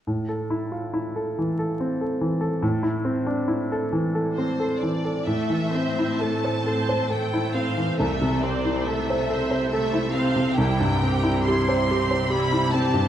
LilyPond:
<<
  \new Staff \with { instrumentName = "Violin section" } { \time 3/4 \key a \minor \tempo 4 = 69 r2. | r2 c''8 d''8 | e''4 a''4 g''8 f''8 | e''8 d''8 e''4 e''8 f''8 |
g''4 c'''4 b''8 a''8 | }
  \new Staff \with { instrumentName = "Grand piano" } { \time 3/4 \key a \minor a,16 a'16 e'16 f'16 e'16 a'16 e16 a'16 c'16 a'16 e16 a'16 | a,16 e'16 c'16 d'16 e'16 a'16 e16 a'16 c'16 a'16 e16 a'16 | a,16 e16 c'16 e'16 a'16 c''16 a'16 c''16 a'16 e'16 c'16 e16 | c,16 c16 c'16 e'16 a'16 c''16 a'16 c''16 a'16 e'16 c'16 c16 |
c,16 g,16 c'16 e'16 g'16 c''16 g'16 c''16 g'16 e'16 c'16 g,16 | }
  \new Staff \with { instrumentName = "Viola section" } { \time 3/4 \key a \minor r2. | r2. | <a a'>8 <c' c''>8 <a a'>8 <c' c''>8 <a a'>8 <c' c''>8 | <a a'>8 <c' c''>8 <a a'>8 <c' c''>8 <a a'>8 <c' c''>8 |
<g e'>8 <c' g'>8 <g e'>8 <c' g'>8 <g e'>8 <c' g'>8 | }
  \new Staff \with { instrumentName = "Cello section" } { \clef bass \time 3/4 \key a \minor r2. | r2. | a,2. | c2.~ |
c2. | }
>>